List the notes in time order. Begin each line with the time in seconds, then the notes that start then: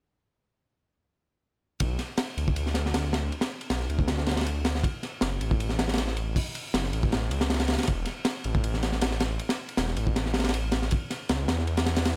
1.80 B1, kick, ride
1.99 snare, ride
2.17 snare, ride
2.37 D2, ride
2.48 kick
2.56 ride
2.66 snare
2.74 snare, ride
2.86 snare
2.94 snare, ride
3.03 snare
3.13 snare, ride
3.32 ride
3.41 snare, ride
3.61 ride
3.70 B1, snare, ride
3.80 snare
3.89 D2, ride
3.99 kick
4.08 snare, ride
4.18 snare
4.26 snare, ride
4.31 snare, ride
4.37 snare, ride
4.41 snare, ride
4.46 ride
4.65 snare, ride
4.75 snare
4.84 kick, ride
5.03 snare, ride
5.21 F#1, snare, ride
5.41 A1, ride
5.51 kick
5.60 ride
5.69 snare
5.79 snare, ride
5.88 snare, ride
5.93 snare, ride
5.98 snare, ride
6.08 snare
6.17 ride
6.36 kick, open hi-hat
6.46 ride
6.55 ride
6.74 F#1, snare, ride
6.83 snare
6.93 A1, ride
7.03 kick
7.12 snare, ride
7.22 snare
7.31 C#2, ride
7.41 snare, ride
7.50 snare, ride
7.54 snare, ride
7.60 snare, ride
7.68 snare, ride
7.73 snare, ride
7.78 snare, ride
7.83 snare, ride
7.87 E1, kick, ride
8.05 snare, ride
8.25 snare, ride
8.44 A1, ride
8.55 kick
8.64 ride
8.74 snare
8.83 snare, ride
8.92 snare
9.01 snare, ride
9.11 snare
9.20 snare, ride
9.39 ride
9.49 snare, ride
9.69 ride
9.77 E1, snare, ride
9.88 snare
9.96 A1, ride
10.07 kick
10.16 snare, ride
10.26 snare
10.34 snare, ride
10.39 snare, ride
10.44 snare, ride
10.49 snare, ride
10.54 ride
10.72 snare, ride
10.82 snare
10.91 kick, ride
11.10 snare, ride
11.29 C#2, snare, ride
11.48 E2, snare, ride
11.59 snare
11.67 ride
11.77 snare, ride
11.86 snare, ride
11.96 snare, ride
12.05 snare, ride